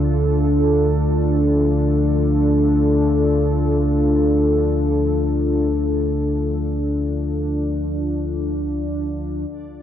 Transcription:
Already playing: synth drone D2 D3, ambient pad D4 F4 A4
9.49 synth drone D2 D3, synth texture D4 D5

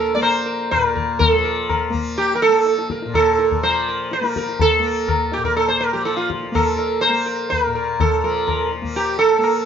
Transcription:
Already playing: tanpura A#2 F3 A#3, sitar A4 A#4
0.15 tanpura A#3, sitar D5
0.22 sitar C5, tabla na
0.46 sitar A#4
0.71 sitar A#4, tabla na, tabla ge
0.75 tanpura A#2
0.95 sitar A#4, tabla ge
1.19 sitar A4, tabla tin, tabla ge
1.32 tanpura F3
1.45 sitar A#4
1.69 sitar A#4, tabla na, tabla ge
1.90 tanpura A#3, tabla ge
2.18 sitar G4, tabla tin
2.35 sitar A#4
2.42 sitar A4, tabla na
2.48 tanpura A#3
2.66 tabla te
2.78 tabla te
2.90 sitar A#4, tabla ke
3.02 tanpura A#2, tabla te
3.14 sitar A4, tabla na, tabla ge
3.38 sitar A#4, tabla te
3.51 tabla ge
3.63 tanpura F3, sitar C5, tabla na
3.88 sitar A#4
4.11 sitar A#4, tabla te
4.21 tanpura A#3, tabla te
4.36 sitar A#4, tabla ke
4.49 tabla te
4.59 sitar A4, tabla tin, tabla ge
4.79 tanpura A#3
4.86 sitar A#4
5.08 sitar A#4, tabla na, tabla ge
5.32 sitar G4, tabla te
5.37 tanpura A#2
5.44 sitar A#4, tabla ge
5.56 sitar A4, tabla tin
5.68 sitar C5
5.80 sitar A#4, tabla na
5.93 tanpura F3, sitar G4
6.05 sitar A4, tabla te
6.17 sitar F4, tabla te
6.30 tabla ke
6.43 tabla te
6.52 tanpura A#3, sitar A4, tabla na, tabla ge
6.77 sitar A#4, tabla te
7.01 sitar C5, tabla na
7.09 tanpura A#3
7.26 sitar A#4
7.50 sitar A#4, tabla tin, tabla ge
7.66 tanpura A#2
7.75 sitar A#4
8.00 sitar A4, tabla tin, tabla ge
8.24 tanpura F3, sitar A#4
8.47 sitar A#4, tabla na, tabla ge
8.72 tabla te
8.82 tanpura A#3, tabla ge
8.96 sitar G4, tabla tin
9.19 sitar A4, tabla na
9.38 tanpura A#3
9.44 sitar A#4, tabla na

